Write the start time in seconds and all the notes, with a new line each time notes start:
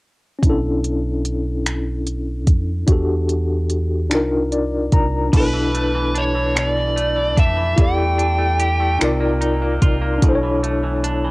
0.39 C#4 D4
0.43 B1 E4, kick, closed hi-hat
0.50 A4
0.84 closed hi-hat
1.25 closed hi-hat
1.66 finger snap, closed hi-hat
2.07 closed hi-hat
2.47 F2, kick, closed hi-hat
2.87 E2 D4 F#4 G4, kick, closed hi-hat
2.92 A4
3.29 closed hi-hat
3.70 closed hi-hat
4.10 C2 D4 D#4 F4, finger snap, closed hi-hat
4.15 A#4
4.52 D5, closed hi-hat
4.92 C2 A#5, kick, closed hi-hat
5.29 D4 E4
5.33 B1 B2 A4, kick, closed hi-hat, crash
5.37 B4
5.54 E3
5.74 A3, closed hi-hat
5.95 E3
6.15 D4 C#5, closed hi-hat
6.35 E3
6.55 B2 C#5, finger snap, closed hi-hat
6.70 D5
6.76 E3
6.96 A3, closed hi-hat
7.16 E3
7.37 F2 D4 E5, kick, closed hi-hat
7.57 E3
7.76 E2 E3 E4 G4 A4 G5, kick, closed hi-hat
7.82 D5
7.98 A3
8.18 D4, closed hi-hat
8.38 A3
8.60 G4, closed hi-hat
8.80 A3
8.99 C2 C3 D#4 F4 A#4, finger snap, closed hi-hat
9.04 D5
9.20 A#3
9.41 D#4, closed hi-hat
9.62 A#3
9.82 C2 F4, kick, closed hi-hat
10.01 A#3
10.18 D4 E4
10.22 B1 B2 A4, kick, closed hi-hat
10.29 C5
10.35 C#5
10.43 E3
10.63 A3, closed hi-hat
10.83 E3
11.04 D4, closed hi-hat
11.24 E3